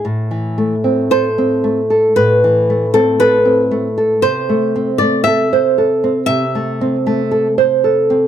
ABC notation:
X:1
M:4/4
L:1/16
Q:1/4=58
K:Am
V:1 name="Nylon-string guitar"
z4 c4 B3 A B4 | c3 d e4 e6 z2 |]
V:2 name="Nylon-string guitar"
A,, E, A, C A C A, A A,, E, A, C A C A, A | C, A, C A, A c A C C, A, C A, A c A C |]